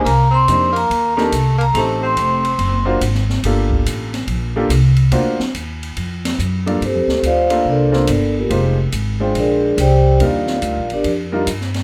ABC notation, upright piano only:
X:1
M:4/4
L:1/8
Q:"Swing" 1/4=142
K:Gm
V:1 name="Upright piano"
z2 [B,DEGc] z2 [B,DEGB] z2 | [A,CEGc]3 z2 [^A,D^E^Fc] z2 | [B,DFGA]3 z2 [B,DFGA] z2 | [^A,D^E^Fc] z6 [G,,A,DE=Ad] |
z3 [B,DFAc]2 [B,DFAc] z2 | [_A,EFGc] z2 [A,DFcg]3 z2 | [G,DEFB]3 z2 [G,DEFB] z2 |]